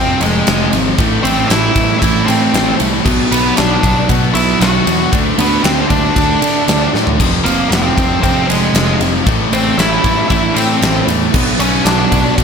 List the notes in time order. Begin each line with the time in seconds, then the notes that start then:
Already playing: F2 C3 F3 C4 C5
0.20 F1 F2 C3 F3 G#3 G#4, ride
0.46 F1 F2 C3 F3, snare, ride
0.72 G#1 F2 C3 F3, snare, ride
0.98 A1 A2 E3 A3, kick, ride
1.23 A1 A2 E3 A3 C4 C5, ride
1.47 A1 A2 E3 A3 E4 E5, ride
1.51 snare
1.75 A1 A2 E3 A3, kick, ride
1.99 A1 A2 E3 A3 E4 E5, kick, ride
2.26 A2 E3 A3 C4 C5, ride
2.52 A1 A2 E3 A3, snare, ride
2.78 C2 A2 E3 A3, ride
3.04 B1 B2 F#3 B3, kick, crash
3.30 B1 B2 F#3 B3 B4, ride
3.56 B1 B2 F#3 B3 D4 D5, snare, ride
3.82 B1 B2 F#3 B3, kick, ride
4.08 B2 F#3 B3, kick, ride
4.34 B1 B2 F#3 B3 E4 E5, ride
4.60 B1 B2 F#3 B3 F#4 F#5, snare, ride
4.86 E2 B2 F#3 B3, ride
5.12 D2 D3 A3 D4, kick, ride
5.38 D2 D3 A3 B3 D4 B4, ride
5.63 D2 D3 A3 C4 D4 C5, snare, ride
5.81 C5
5.89 D2 D3 A3 D4 D5, kick, ride
6.16 D2 D3 A3 D4, kick, ride
6.42 D3 A3 D4, ride
6.68 D2 D3 A3 D4, snare, ride
6.94 A2 D3 A3 D4, snare
7.07 floor tom
7.19 F1 F2 C3 F3, kick, crash
7.44 F1 F2 C3 F3 A#3 A#4, ride
7.69 F1 F2 C3 F3 C4 C5, ride
7.73 snare
7.97 F1 F2 C3 F3, kick, ride
8.21 F2 C3 F3 C4 C5, kick, ride
8.48 F1 F2 C3 F3 G#3 G#4, ride
8.74 F1 F2 C3 F3, snare, ride
8.99 F1 F2 C3 F3, snare, ride
9.26 A1 A2 E3 A3, kick, ride
9.51 A1 A2 E3 A3 C4 C5, ride
9.77 A1 A2 E3 A3 E4 E5, snare, ride
10.03 A1 A2 E3 A3, kick, ride
10.28 A1 A2 E3 A3 E4 E5, kick, ride
10.54 A2 E3 A3 C4 C5, ride
10.81 A1 A2 E3 A3, snare, ride
11.07 E2 A2 E3 A3, snare, ride
11.33 B1 B2 F#3 B3, kick, crash
11.59 B1 B2 F#3 B3 C#4 C#5, ride
11.85 B1 B2 F#3 B3 D4 D5, snare, ride
12.11 B1 B2 F#3 B3, kick, ride
12.37 B2 F#3 B3, kick, ride